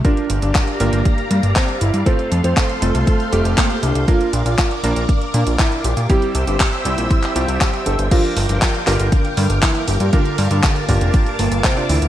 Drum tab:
CC |----------------|----------------|----------------|----------------|
HH |xxxxxxxxxxxxxxxx|xxxxxxxxxxxxxxxx|xxxxxxxxxxxxxxxx|xxxxxxxxxxxxxxxx|
CP |----x-------x---|----x-------x---|----x-------x---|----x----x--x---|
BD |o---o---o---o---|o---o---o---o---|o---o---o---o---|o---o---o---o---|

CC |x---------------|----------------|
HH |xxoxxxoxxxoxxxox|xxoxxxoxxxoxxxox|
CP |----x-x-----x---|----x-------x---|
BD |o---o---o---o---|o---o-o-o---o---|